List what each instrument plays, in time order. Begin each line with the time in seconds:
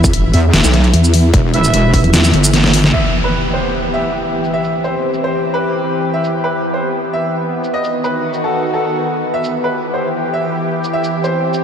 Already playing: wobble bass E2, analog synth pad E3 B3 E4
0.04 kick, shaker
0.13 wobble bass G1, closed hi-hat
0.34 wobble bass E2, brass ensemble E4 B4 E5, open hi-hat
0.54 wobble bass E1, snare, closed hi-hat
0.64 wobble bass B1, shaker
0.74 snare, closed hi-hat
0.84 closed hi-hat
0.94 wobble bass E2, closed hi-hat
1.04 shaker
1.14 open hi-hat
1.34 wobble bass E1, kick, closed hi-hat
1.54 brass ensemble E4 B4 E5, closed hi-hat
1.64 shaker
1.74 wobble bass E1, closed hi-hat
1.94 brass ensemble E4 B4 E5, kick, open hi-hat
2.04 wobble bass E2, closed hi-hat
2.14 snare, closed hi-hat, shaker
2.24 shaker
2.34 wobble bass G1, closed hi-hat
2.44 closed hi-hat, shaker
2.54 snare, closed hi-hat
2.64 snare
2.74 open hi-hat
2.84 snare
2.93 analog synth pad E3 B3 G4, grand piano E5, crash, impact
3.04 shaker
3.24 grand piano B4
3.54 grand piano C5
3.94 grand piano E5
4.44 shaker
4.54 analog synth pad C4 G4, grand piano E5
4.64 shaker
4.84 grand piano C5, shaker
5.14 shaker
5.24 grand piano C5
5.54 grand piano B4
6.14 analog synth pad B3, grand piano E5
6.24 shaker
6.44 grand piano B4
6.74 grand piano C5
7.13 grand piano E5
7.64 shaker
7.73 analog synth pad D#3 F#4, grand piano D#5
7.84 shaker
8.04 grand piano B4, shaker
8.34 shaker
8.44 grand piano A4
8.74 grand piano A4
9.34 analog synth pad E3 G4, grand piano E5
9.44 shaker
9.64 grand piano B4
9.94 grand piano C5
10.34 grand piano E5
10.84 shaker
10.93 analog synth pad C4, grand piano E5
11.04 shaker
11.24 grand piano C5, shaker
11.54 shaker